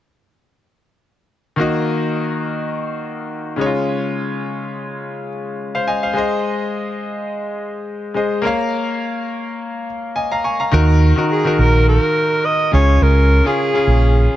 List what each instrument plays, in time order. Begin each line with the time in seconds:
1.56 grand piano D#3 A#3 F#4
1.61 grand piano D#5
3.56 grand piano C#3 G#3 D#4
3.61 grand piano C#5
3.66 grand piano F4
5.75 grand piano C5 F5
5.88 grand piano D#5 G#5
6.03 grand piano C5 F5
6.13 grand piano G#3 G#4 C5
6.18 grand piano D#5
8.14 grand piano G#3 G#4 C5 D#5
8.42 grand piano A#3 A#4 C#5
8.47 grand piano F5
10.16 grand piano D#5 G#5
10.32 grand piano F5 A#5
10.44 grand piano G#5 C#6
10.60 grand piano F5 A#5
10.71 fingered electric bass D#2, grand piano D#3 D#4 F#4 A#4
11.16 grand piano D#3 D#4 F#4 A#4
11.31 alto saxophone G#4
11.44 grand piano D#3 D#4 F#4 A#4
11.58 fingered electric bass A#1, alto saxophone A#4
11.88 alto saxophone A#4
12.45 alto saxophone D#5
12.72 fingered electric bass C#2, grand piano C#3 C#4 F4 G#4, alto saxophone C#5
13.01 fingered electric bass C#2, alto saxophone A#4
13.45 grand piano C#3 C#4 F4 G#4, alto saxophone G#4
13.73 grand piano C#3 C#4 F4 G#4
13.87 fingered electric bass A#1